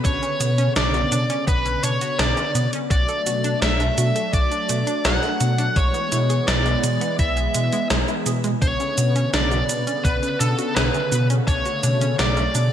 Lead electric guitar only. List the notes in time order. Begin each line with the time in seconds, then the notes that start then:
0.05 C#5
0.77 D5
1.48 B4
1.84 C#5
2.20 D5
2.91 D5
3.62 E5
4.34 D5
5.05 F#5
5.77 C#5
6.48 D5
7.19 E5
8.62 C#5
9.33 D5
10.04 B4
10.40 A4
10.76 B4
11.47 C#5
12.19 D5